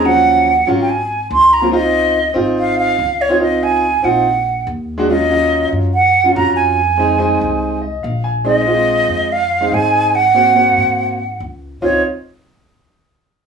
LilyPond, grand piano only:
\new Staff \with { instrumentName = "Grand piano" } { \time 4/4 \key des \major \tempo 4 = 143 <f ges des'>4 r8 <ges des' f'>8 r4. r16 <ges bes c' f'>16 | <c' ees' f'>4 r8 <c' ees' f'>4. r8. <c' ees' f'>16 | <c' ees' f'>4 r8 <c' ees' f'>8 r4. r16 <aes d' fis'>16 | <ges des' f'>16 r16 <ges des' f'>4. r8. <ges des' f'>16 <des' f' ges'>4 |
r8 <aes c' ees'>16 r16 <aes c' ees'>4. ees''8 f''8 aes''8 | <aes c' ees'>16 r16 <aes c' f'>4. r8. <aes c' ees'>16 <aes c' ees'>4 | r8 <bes c' ges'>16 r16 <bes c' ges'>4. r4. | <c' ees' f'>8 r2. r8 | }